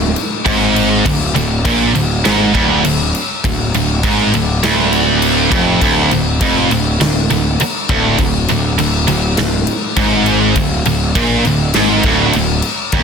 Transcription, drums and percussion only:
0.16 crash medium
0.46 kick loud
0.46 crash medium
0.76 crash medium
1.05 kick medium
1.05 crash medium
1.36 crash medium
1.65 kick loud
1.65 crash loud
1.95 crash medium
2.25 snare loud
2.25 crash medium
2.55 kick loud
2.55 crash medium
2.84 crash medium
3.15 crash medium
3.44 kick loud
3.44 crash medium
3.74 crash medium
4.03 kick loud
4.03 crash medium
4.34 crash medium
4.63 snare loud
4.63 crash medium
4.93 crash medium
5.22 crash medium
5.52 kick loud
5.52 crash medium
5.81 kick loud
5.81 crash medium
6.11 crash medium
6.41 kick loud
6.41 crash medium
6.71 crash medium
7.01 snare loud
7.01 crash medium
7.30 crash medium
7.60 crash medium
7.89 kick loud
7.89 crash medium
8.18 kick loud
8.18 crash medium
8.48 crash medium
8.78 crash medium
9.08 crash medium
9.37 snare loud
9.37 crash medium
9.67 crash medium
9.96 kick loud
9.96 crash medium
10.26 crash medium
10.56 kick loud
10.56 crash medium
10.85 crash medium
11.15 kick loud
11.15 crash medium
11.45 crash medium
11.74 snare loud
11.74 crash medium
12.03 kick loud
12.03 crash medium
12.33 crash medium
12.62 crash medium
12.92 kick loud
12.92 crash medium

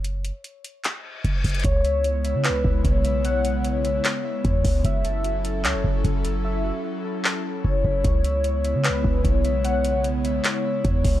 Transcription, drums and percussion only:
0.04 closed hi-hat medium
0.25 closed hi-hat medium
0.44 closed hi-hat medium
0.64 closed hi-hat medium
0.84 clap loud
0.84 closed hi-hat medium
1.25 kick loud
1.25 closed hi-hat medium
1.44 kick medium
1.44 closed hi-hat soft
1.44 open hi-hat medium
1.50 closed hi-hat medium
1.55 closed hi-hat medium
1.59 closed hi-hat medium
1.64 kick loud
1.64 closed hi-hat medium
1.85 closed hi-hat medium
2.04 closed hi-hat medium
2.25 closed hi-hat medium
2.44 clap loud
2.44 closed hi-hat medium
2.64 kick medium
2.85 kick loud
2.85 closed hi-hat medium
3.05 closed hi-hat medium
3.25 closed hi-hat medium
3.45 closed hi-hat medium
3.65 closed hi-hat medium
3.85 closed hi-hat medium
4.05 clap loud
4.05 closed hi-hat medium
4.45 kick loud
4.45 closed hi-hat medium
4.65 kick loud
4.65 open hi-hat medium
4.85 kick loud
4.85 closed hi-hat medium
5.05 closed hi-hat medium
5.24 closed hi-hat medium
5.45 closed hi-hat medium
5.65 clap loud
5.65 closed hi-hat medium
5.84 kick medium
6.05 kick loud
6.05 closed hi-hat medium
6.25 closed hi-hat medium
7.25 clap loud
7.65 kick loud
7.84 kick loud
8.04 kick loud
8.04 closed hi-hat medium
8.24 closed hi-hat medium
8.44 closed hi-hat medium
8.65 closed hi-hat medium
8.84 clap loud
8.84 closed hi-hat medium
9.04 kick medium
9.25 kick loud
9.25 closed hi-hat medium
9.45 closed hi-hat medium
9.65 closed hi-hat medium
9.85 closed hi-hat medium
10.04 closed hi-hat medium
10.25 closed hi-hat medium
10.44 clap loud
10.44 closed hi-hat medium
10.85 kick loud
10.85 closed hi-hat medium
11.05 kick loud
11.05 open hi-hat medium

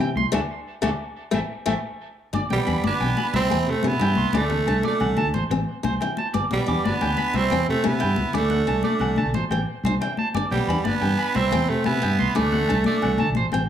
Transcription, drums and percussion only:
0.01 low agogo medium
0.17 high conga medium
0.17 low conga soft
0.25 low conga soft
0.34 muted conga medium
0.34 low agogo medium
0.84 muted conga medium
0.84 low agogo medium
1.34 muted conga loud
1.34 low agogo medium
1.66 muted conga loud
1.66 low agogo loud
2.34 muted conga medium
2.34 low agogo medium
2.50 high conga medium
2.50 low conga medium
2.67 low conga soft
2.67 low agogo medium
2.84 muted conga medium
2.84 high conga medium
3.00 low conga medium
3.00 low agogo medium
3.17 high conga medium
3.17 low agogo medium
3.34 muted conga medium
3.50 high conga medium
3.50 low conga medium
3.50 low agogo medium
3.83 muted conga medium
3.83 high conga medium
3.83 low agogo medium
3.91 low conga soft
4.00 low conga medium
4.00 low agogo medium
4.15 high conga medium
4.15 low conga soft
4.33 muted conga loud
4.33 low agogo medium
4.50 high conga medium
4.50 low conga medium
4.66 low conga soft
4.66 low agogo medium
4.83 muted conga medium
4.83 high conga medium
5.00 low conga medium
5.00 low agogo medium
5.17 high conga loud
5.17 low agogo medium
5.34 muted conga medium
5.51 high conga medium
5.51 low conga medium
5.51 low agogo medium
5.84 muted conga medium
5.84 high conga medium
5.84 low agogo medium
5.93 low conga soft
6.01 low conga medium
6.01 low agogo medium
6.17 high conga medium
6.17 low conga soft
6.34 muted conga medium
6.34 low agogo medium
6.51 high conga medium
6.51 low conga medium
6.68 low conga soft
6.68 low agogo medium
6.86 muted conga medium
6.86 high conga medium
7.01 low conga medium
7.01 low agogo medium
7.17 high conga medium
7.17 low agogo medium
7.34 muted conga medium
7.50 high conga medium
7.50 low conga medium
7.50 low agogo medium
7.84 muted conga medium
7.84 high conga medium
7.84 low agogo medium
7.93 low conga soft
8.00 low conga medium
8.00 low agogo medium
8.16 high conga medium
8.16 low conga soft
8.33 muted conga medium
8.33 low conga soft
8.33 low agogo medium
8.50 high conga medium
8.50 low conga medium
8.58 low conga soft
8.67 low conga soft
8.67 low agogo medium
8.74 low conga soft
8.83 muted conga medium
8.83 high conga medium
8.92 low conga soft
8.99 low conga medium
8.99 low agogo medium
9.16 high conga medium
9.16 low agogo medium
9.34 muted conga medium
9.51 high conga medium
9.51 low conga medium
9.51 low agogo medium
9.85 muted conga medium
9.85 high conga medium
9.85 low agogo medium
9.93 low conga soft
10.01 low conga medium
10.01 low agogo medium
10.17 high conga medium
10.35 muted conga medium
10.35 low agogo medium
10.52 high conga medium
10.52 low conga medium
10.69 low agogo medium
10.85 muted conga medium
10.85 high conga medium
11.01 low conga medium
11.01 low agogo medium
11.18 low agogo medium
11.35 muted conga medium
11.51 high conga medium
11.51 low conga medium
11.51 low agogo medium
11.84 muted conga medium
11.84 high conga medium
11.84 low agogo medium
11.94 low conga soft
12.03 low agogo medium
12.18 high conga medium
12.18 low conga soft
12.35 muted conga medium
12.35 low agogo medium
12.52 high conga medium
12.52 low conga medium
12.68 low conga soft
12.68 low agogo medium
12.84 muted conga medium
12.84 high conga medium
13.02 low conga medium
13.02 low agogo medium
13.18 high conga medium
13.18 low agogo medium
13.35 muted conga medium
13.52 high conga medium
13.52 low conga medium
13.52 low agogo medium

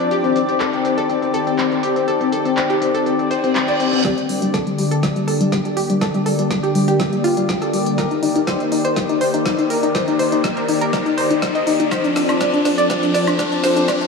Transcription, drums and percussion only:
0.11 closed hi-hat soft
0.11 shaker soft
0.24 closed hi-hat soft
0.24 shaker soft
0.36 closed hi-hat medium
0.36 shaker medium
0.49 closed hi-hat soft
0.49 shaker soft
0.60 clap loud
0.60 closed hi-hat medium
0.60 shaker soft
0.73 closed hi-hat soft
0.73 shaker soft
0.85 closed hi-hat medium
0.85 shaker medium
0.98 closed hi-hat soft
0.98 shaker soft
1.10 closed hi-hat soft
1.10 shaker soft
1.22 closed hi-hat soft
1.22 shaker soft
1.34 closed hi-hat medium
1.34 shaker medium
1.47 closed hi-hat medium
1.47 shaker soft
1.58 clap loud
1.58 closed hi-hat medium
1.58 shaker soft
1.72 closed hi-hat soft
1.72 shaker soft
1.83 closed hi-hat medium
1.83 shaker medium
1.96 closed hi-hat medium
1.96 shaker soft
2.08 closed hi-hat medium
2.08 shaker soft
2.21 closed hi-hat soft
2.21 shaker soft
2.33 closed hi-hat medium
2.33 shaker medium
2.45 closed hi-hat soft
2.45 shaker soft
2.57 clap loud
2.57 closed hi-hat medium
2.57 shaker soft
2.70 closed hi-hat soft
2.70 shaker soft
2.82 closed hi-hat medium
2.82 shaker medium
2.95 closed hi-hat medium
2.95 shaker soft
3.06 closed hi-hat medium
3.06 shaker soft
3.19 closed hi-hat soft
3.19 shaker soft
3.31 closed hi-hat medium
3.31 shaker medium
3.44 closed hi-hat soft
3.44 shaker soft
3.55 clap loud
3.55 closed hi-hat medium
3.55 shaker soft
3.68 closed hi-hat soft
3.68 shaker soft
3.80 closed hi-hat medium
3.80 shaker medium
3.93 closed hi-hat medium
3.93 shaker soft
4.05 kick loud
4.05 snare soft
4.05 closed hi-hat medium
4.18 closed hi-hat soft
4.29 open hi-hat loud
4.42 closed hi-hat medium
4.54 kick loud
4.54 snare soft
4.54 closed hi-hat medium
4.67 closed hi-hat soft
4.78 open hi-hat loud
4.91 closed hi-hat medium
5.03 kick loud
5.03 snare soft
5.03 closed hi-hat soft
5.16 closed hi-hat soft
5.28 open hi-hat loud
5.41 closed hi-hat medium
5.52 kick loud
5.52 snare soft
5.52 closed hi-hat medium
5.65 closed hi-hat soft
5.77 open hi-hat loud
5.90 closed hi-hat medium
6.01 kick loud
6.01 snare soft
6.01 closed hi-hat soft
6.14 closed hi-hat soft
6.26 open hi-hat loud
6.39 closed hi-hat soft
6.51 kick loud
6.51 snare medium
6.51 closed hi-hat medium
6.64 closed hi-hat soft
6.75 open hi-hat loud
6.88 closed hi-hat medium
7.00 kick loud
7.00 snare medium
7.00 closed hi-hat soft
7.13 closed hi-hat soft
7.24 open hi-hat loud
7.37 closed hi-hat medium
7.49 kick loud
7.49 snare medium
7.49 closed hi-hat soft
7.62 closed hi-hat soft
7.73 open hi-hat loud
7.86 closed hi-hat medium
7.98 kick loud
7.98 snare medium
7.98 closed hi-hat soft
8.11 closed hi-hat soft
8.23 open hi-hat loud
8.36 closed hi-hat soft
8.47 kick loud
8.47 snare medium
8.47 closed hi-hat medium
8.60 closed hi-hat soft
8.72 open hi-hat loud
8.85 closed hi-hat medium
8.96 kick loud
8.96 snare medium
8.96 closed hi-hat soft
9.09 closed hi-hat soft
9.21 open hi-hat loud
9.34 closed hi-hat medium
9.46 kick loud
9.46 snare medium
9.46 closed hi-hat soft
9.59 closed hi-hat soft
9.70 open hi-hat loud
9.83 closed hi-hat soft
9.95 kick loud
9.95 snare medium
9.95 closed hi-hat soft
10.08 closed hi-hat soft
10.19 open hi-hat loud
10.32 closed hi-hat soft
10.44 kick loud
10.44 snare medium
10.44 closed hi-hat soft
10.57 closed hi-hat soft
10.69 open hi-hat loud
10.81 closed hi-hat soft
10.93 kick loud
10.93 snare medium
10.93 closed hi-hat soft
11.06 closed hi-hat soft
11.18 open hi-hat loud
11.31 closed hi-hat soft
11.42 kick loud
11.42 snare medium
11.42 closed hi-hat soft
11.55 closed hi-hat soft
11.67 open hi-hat loud
11.80 closed hi-hat soft
11.91 kick loud
11.91 snare medium
11.91 closed hi-hat soft
11.91 high woodblock medium
11.91 shaker soft
12.04 closed hi-hat soft
12.04 shaker soft
12.16 snare medium
12.16 open hi-hat loud
12.16 shaker medium
12.29 closed hi-hat soft
12.29 high woodblock medium
12.29 shaker soft
12.41 kick loud
12.41 snare medium
12.41 closed hi-hat medium
12.41 shaker soft
12.54 closed hi-hat soft
12.54 shaker soft
12.65 snare medium
12.65 open hi-hat loud
12.65 shaker medium
12.78 closed hi-hat medium
12.78 shaker soft
12.90 kick loud
12.90 snare medium
12.90 closed hi-hat soft
12.90 shaker soft
13.03 closed hi-hat soft
13.03 shaker soft
13.15 snare medium
13.15 open hi-hat loud
13.15 shaker medium
13.27 closed hi-hat medium
13.27 high woodblock medium
13.27 shaker soft
13.39 kick loud
13.39 snare medium
13.39 closed hi-hat medium
13.39 shaker soft
13.52 closed hi-hat soft
13.52 shaker soft
13.64 snare medium
13.64 open hi-hat loud
13.64 shaker medium
13.77 closed hi-hat medium
13.77 shaker soft
13.88 kick loud
13.88 snare medium
13.88 closed hi-hat medium
13.88 high woodblock medium
13.88 shaker soft
14.01 closed hi-hat soft
14.01 shaker soft

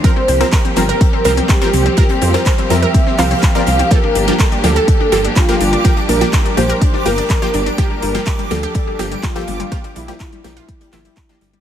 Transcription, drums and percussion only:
0.04 kick loud
0.04 closed hi-hat medium
0.28 closed hi-hat medium
0.28 open hi-hat loud
0.41 closed hi-hat soft
0.41 closed hi-hat medium
0.52 kick loud
0.52 snare loud
0.52 clap loud
0.52 closed hi-hat medium
0.65 closed hi-hat soft
0.76 snare medium
0.76 closed hi-hat medium
0.76 open hi-hat medium
0.89 closed hi-hat medium
0.89 closed hi-hat soft
1.01 kick loud
1.01 closed hi-hat medium
1.25 closed hi-hat medium
1.25 open hi-hat loud
1.37 closed hi-hat medium
1.48 kick loud
1.48 snare loud
1.48 clap loud
1.48 closed hi-hat medium
1.48 closed hi-hat loud
1.62 closed hi-hat soft
1.74 closed hi-hat medium
1.74 open hi-hat loud
1.86 closed hi-hat soft
1.97 kick loud
1.97 closed hi-hat medium
2.09 closed hi-hat medium
2.21 closed hi-hat medium
2.21 open hi-hat loud
2.34 closed hi-hat medium
2.46 kick loud
2.46 snare loud
2.46 clap loud
2.46 closed hi-hat medium
2.58 closed hi-hat soft
2.70 closed hi-hat medium
2.70 open hi-hat medium
2.83 closed hi-hat medium
2.94 kick loud
2.94 closed hi-hat medium
3.07 snare soft
3.19 clap medium
3.19 open hi-hat medium
3.19 open hi-hat loud
3.31 closed hi-hat medium
3.43 kick loud
3.43 snare loud
3.43 clap loud
3.43 closed hi-hat medium
3.55 closed hi-hat soft
3.67 snare soft
3.67 closed hi-hat medium
3.67 open hi-hat medium
3.79 closed hi-hat soft
3.79 closed hi-hat medium
3.91 kick loud
3.91 closed hi-hat medium
4.15 closed hi-hat medium
4.15 open hi-hat loud
4.28 closed hi-hat soft
4.28 closed hi-hat medium
4.40 kick loud
4.40 snare loud
4.40 clap loud
4.40 closed hi-hat medium
4.52 closed hi-hat soft
4.64 snare medium
4.64 closed hi-hat medium
4.64 open hi-hat medium
4.76 closed hi-hat soft
4.76 closed hi-hat medium
4.88 kick loud
4.88 closed hi-hat medium
5.12 closed hi-hat medium
5.12 open hi-hat loud
5.24 closed hi-hat medium
5.36 kick loud
5.36 snare loud
5.36 clap loud
5.36 closed hi-hat medium
5.49 closed hi-hat soft
5.60 closed hi-hat medium
5.60 open hi-hat loud
5.73 closed hi-hat medium
5.85 kick loud
5.85 closed hi-hat medium
5.97 closed hi-hat soft
6.09 closed hi-hat medium
6.09 open hi-hat loud
6.21 closed hi-hat medium
6.33 kick loud
6.33 snare loud
6.33 clap loud
6.33 closed hi-hat medium
6.45 closed hi-hat soft
6.57 closed hi-hat medium
6.57 open hi-hat medium
6.70 closed hi-hat medium
6.82 kick loud
6.82 closed hi-hat medium
6.93 snare soft
7.06 open hi-hat medium
7.06 open hi-hat loud
7.18 closed hi-hat medium
7.30 kick loud
7.30 snare loud
7.30 clap loud
7.30 closed hi-hat medium
7.42 closed hi-hat soft
7.54 snare medium
7.54 closed hi-hat medium
7.54 open hi-hat medium
7.66 closed hi-hat medium
7.66 closed hi-hat soft
7.78 kick loud
7.78 closed hi-hat medium
8.02 closed hi-hat medium
8.02 open hi-hat loud
8.15 closed hi-hat soft
8.15 closed hi-hat medium
8.26 kick loud
8.26 snare loud
8.26 clap loud
8.26 closed hi-hat loud
8.26 closed hi-hat medium
8.39 closed hi-hat soft
8.51 closed hi-hat medium
8.51 open hi-hat medium
8.63 closed hi-hat medium
8.75 kick loud
8.75 closed hi-hat loud
8.75 closed hi-hat medium
8.99 closed hi-hat medium
8.99 open hi-hat loud
9.12 closed hi-hat medium
9.23 kick loud
9.23 snare loud
9.23 clap loud
9.23 closed hi-hat medium
9.36 closed hi-hat soft
9.48 closed hi-hat medium
9.48 open hi-hat medium
9.60 closed hi-hat medium
9.72 kick loud
9.72 closed hi-hat medium
9.84 closed hi-hat soft
9.96 closed hi-hat medium
9.96 open hi-hat loud
10.08 closed hi-hat medium
10.20 kick loud
10.20 snare loud
10.20 clap loud
10.20 closed hi-hat medium
10.32 closed hi-hat soft
10.44 snare loud
10.44 closed hi-hat medium
10.44 open hi-hat medium
10.57 snare loud
10.57 closed hi-hat medium
10.69 kick loud
10.69 closed hi-hat medium
10.81 closed hi-hat soft
10.81 closed hi-hat medium
10.93 clap medium
10.93 open hi-hat loud
11.05 closed hi-hat medium
11.16 kick loud
11.16 clap loud
11.16 closed hi-hat medium
11.29 closed hi-hat soft
11.41 snare loud
11.41 closed hi-hat medium
11.41 open hi-hat medium
11.53 closed hi-hat medium

